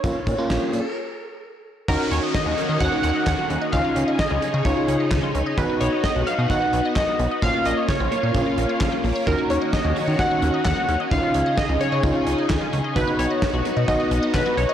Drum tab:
CC |--------|x-------|--------|--------|
HH |xxxx----|-xxxxxxx|xxxxxxxx|xxxxxxxx|
CP |--------|------x-|------x-|------x-|
SD |--o-----|--o---o-|--o---o-|--o---o-|
BD |oo------|o-o-o-o-|o-o-o-o-|o-o-o-o-|

CC |--------|--------|--------|--------|
HH |xxxxxxxo|xxxoxxxx|xxxxxxxx|xxxxxxxx|
CP |------x-|------x-|------x-|------x-|
SD |--o---o-|--o---o-|--o---o-|--o---o-|
BD |o-o-o-o-|o-o-o-o-|o-o-o-o-|o-o-o-o-|